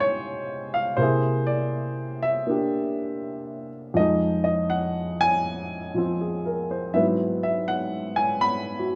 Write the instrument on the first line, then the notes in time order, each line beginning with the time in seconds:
grand piano
Already playing: C3 C#3 G#3 D#4 F4 C5 F5 G#5
0.00 C#5
0.74 F5
0.97 C3 A#3 E4 C5
1.02 G#4
1.47 D5
2.23 E5
2.47 A#3 D4 G4
3.94 F2 F3 G#3 D#5
3.99 D#4
4.44 D#5
4.70 F#5
5.21 G#5
5.95 F3 C4 F4
6.21 G#4
6.46 A#4
6.71 C5
6.94 G#2 F#3 B3 C4 E4 E5
7.43 E5
7.68 F#5
8.16 G#5
8.41 B5
8.79 F#4